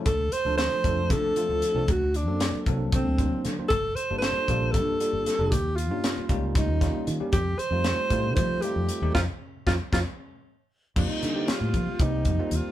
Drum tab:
CC |-------|-------|-------|-------|
HH |xxxxxxx|xxxxxxx|xxxxxxx|xxxxxxx|
SD |--o----|--o---o|--o---o|--o-oo-|
BD |o--oo--|o--ooo-|o--oo--|o--ooo-|

CC |-------|-------|x------|
HH |xxxxxxx|-------|-xxxxxx|
SD |--o----|o-oo---|-oo----|
BD |o--oo--|o-oo---|o--ooo-|